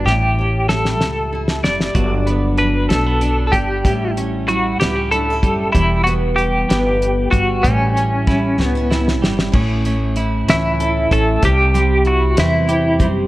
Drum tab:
CC |------------|------------|------------|------------|
HH |------------|x-x-x-x-x-x-|x-x-x-x-x-x-|x-x-x-x-x-x-|
SD |o---ooo--ooo|------o-----|------o-----|------o-----|
BD |------------|o---------o-|o---------o-|o---------o-|

CC |------------|x-----------|------------|
HH |x-x-x-------|--x-x-x-x-x-|x-x-x-x-x-x-|
SD |----o-o-oooo|------o-----|------o-----|
BD |o---o-------|o---------o-|o---------o-|